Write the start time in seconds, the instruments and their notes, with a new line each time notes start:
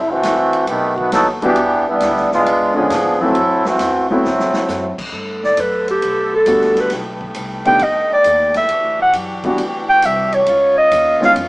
Already playing: upright bass F#1
0.11 trombone section E3 A3 C4 F#4
0.23 upright bass A1, kick, snare, hi-hat pedal, ride
0.53 ride
0.67 upright bass B1, trombone section D#3 A3 B3 G4, kick, ride
0.96 trombone section D#3 A3 B3 F#4, kick
1.12 upright bass D#2, trombone section F#3 B3 D#4 A4, snare, hi-hat pedal, ride
1.42 grand piano E3 G3 B3 D4 F#4, trombone section E3 B3 D4 G4, kick, ride
1.56 upright bass E2, kick, ride
1.89 trombone section G3 B3 D4 E4
2.00 upright bass D2, kick, snare, hi-hat pedal, ride
2.16 snare
2.31 trombone section G#3 B3 D4 F4, snare
2.46 upright bass C#2, kick, ride
2.74 grand piano D3 G#3 B3 C#4 F4, trombone section F3 B3 D4 G#4
2.90 upright bass G#2, kick, snare, hi-hat pedal, ride
3.20 grand piano E3 F#3 A3 C4 E4, trombone section F#3 C4 E4 A4
3.35 upright bass F#2, kick, ride
3.65 trombone section E3 A3 C4 F#4, snare
3.79 upright bass E2, kick, snare, hi-hat pedal, ride
4.09 grand piano F#3 A3 B3 C4 E4, trombone section F#3 A3 C4 E4
4.23 upright bass D2, snare
4.39 upright bass C2, snare
4.54 upright bass A1, snare
4.68 upright bass F#2, snare, hi-hat pedal
4.98 kick, crash
5.11 upright bass G2, saxophone section D3 A3 B3 A4, kick
5.44 clarinet D5, snare
5.57 upright bass F#2, clarinet B4, kick, hi-hat pedal, ride
5.88 clarinet G4, ride
6.02 upright bass B1, kick, ride
6.36 clarinet A4
6.46 upright bass D2, grand piano G3 A3 B3 D4 F#4, kick, hi-hat pedal, ride
6.61 snare
6.75 snare, ride
6.80 clarinet B4
6.90 upright bass B1, saxophone section D#3 G4, kick, snare, ride
7.21 kick
7.34 upright bass C2, kick, hi-hat pedal, ride
7.65 grand piano D#3 A3 B3 D4 G4, clarinet G5, kick, ride
7.79 upright bass D2, clarinet D#5, kick, ride
8.10 clarinet D5, muted upright bass stroke
8.24 upright bass D#2, kick, hi-hat pedal, ride
8.54 clarinet E5, snare, ride
8.69 upright bass E2, saxophone section E3 D4 F#4 G4, kick, ride
8.84 upright bass D2
8.99 upright bass B1, clarinet F#5
9.13 upright bass F#2, kick, hi-hat pedal, ride
9.44 grand piano E3 G3 B3 D4 F#4, kick, ride
9.58 upright bass D2, kick, ride
9.90 clarinet G5
10.02 upright bass C2, clarinet E5, kick, hi-hat pedal, ride
10.32 clarinet C#5, ride
10.46 upright bass C#2, saxophone section B3 C#4 D#4 F4, kick, ride
10.78 clarinet D#5
10.91 upright bass D#2, kick, hi-hat pedal, ride
11.20 grand piano D#3 G#3 B3 C#4 F4, snare
11.25 clarinet F5
11.36 upright bass F2, kick, ride